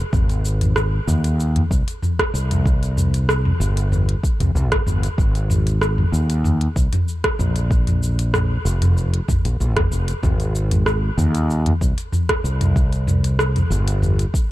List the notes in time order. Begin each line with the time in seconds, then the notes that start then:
0.13 G#1, kick, mid tom, cabasa
0.29 closed hi-hat, cabasa
0.45 cabasa
0.61 closed hi-hat, mid tom, cabasa
0.76 cross-stick, cabasa
1.07 D#2, mid tom, cabasa
1.24 closed hi-hat, cabasa
1.40 cabasa
1.56 closed hi-hat, mid tom
1.71 C2, kick, cabasa
1.88 closed hi-hat, cabasa
2.02 mid tom, cabasa
2.19 kick, cross-stick, closed hi-hat
2.34 C2, cabasa
2.51 closed hi-hat, mid tom, cabasa
2.66 kick, cabasa
2.83 closed hi-hat, cabasa
2.97 mid tom, cabasa
3.14 closed hi-hat, cabasa
3.29 cross-stick, cabasa
3.45 mid tom
3.60 G1, cabasa
3.77 closed hi-hat, cabasa
3.92 mid tom, cabasa
4.09 closed hi-hat
4.24 kick, cabasa
4.40 C2, closed hi-hat, mid tom, cabasa
4.55 C2, cabasa
4.72 G1, kick, cross-stick, closed hi-hat
4.86 G1, mid tom, cabasa
5.03 closed hi-hat, cabasa
5.18 G#1, kick, cabasa
5.35 closed hi-hat, cabasa
5.50 mid tom, cabasa
5.67 closed hi-hat, cabasa
5.82 cross-stick, cabasa
5.98 mid tom
6.12 D#2, cabasa
6.30 closed hi-hat, cabasa
6.44 mid tom, cabasa
6.61 closed hi-hat
6.76 C2, kick, cabasa
6.93 closed hi-hat, mid tom, cabasa
7.08 cabasa
7.24 kick, cross-stick, closed hi-hat
7.39 A#1, mid tom, cabasa
7.56 closed hi-hat, cabasa
7.71 kick, cabasa
7.87 closed hi-hat, mid tom, cabasa
8.03 cabasa
8.19 closed hi-hat, cabasa
8.34 cross-stick, mid tom, cabasa
8.65 F1, cabasa
8.82 closed hi-hat, mid tom, cabasa
8.98 cabasa
9.14 closed hi-hat
9.28 kick, mid tom, cabasa
9.45 A#1, closed hi-hat, cabasa
9.60 A#1, cabasa
9.77 F1, kick, cross-stick, closed hi-hat, mid tom
9.91 F1, cabasa
10.08 closed hi-hat, cabasa
10.23 G#1, kick, mid tom, cabasa
10.40 closed hi-hat, cabasa
10.55 cabasa
10.71 closed hi-hat, mid tom, cabasa
10.86 cross-stick, cabasa
11.18 D#2, mid tom, cabasa
11.35 closed hi-hat, cabasa
11.50 cabasa
11.66 closed hi-hat, mid tom
11.81 C2, kick, cabasa
11.98 closed hi-hat, cabasa
12.12 mid tom, cabasa
12.29 kick, cross-stick, closed hi-hat
12.44 C2, cabasa
12.61 closed hi-hat, mid tom, cabasa
12.76 kick, cabasa
12.93 closed hi-hat, cabasa
13.07 mid tom, cabasa
13.24 closed hi-hat, cabasa
13.39 cross-stick, cabasa
13.56 closed hi-hat, mid tom, cabasa
13.70 G1, cabasa
13.88 closed hi-hat, cabasa
14.02 mid tom, cabasa
14.19 closed hi-hat, cabasa
14.34 kick, cabasa